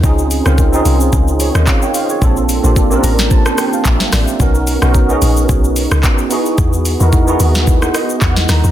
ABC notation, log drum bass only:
X:1
M:4/4
L:1/16
Q:"Swing 16ths" 1/4=110
K:Elyd
V:1 name="Log drum bass" clef=bass
C,,3 C,,3 ^B,,,2 C,,3 D,, z4 | A,,,3 A,,,3 =A,,,4 z2 ^A,,, z =A,,, z | B,,,3 B,,,3 A,,,2 B,,,3 C,, z4 | E,,3 E,,3 D,,4 z2 E,,2 D,, E,, |]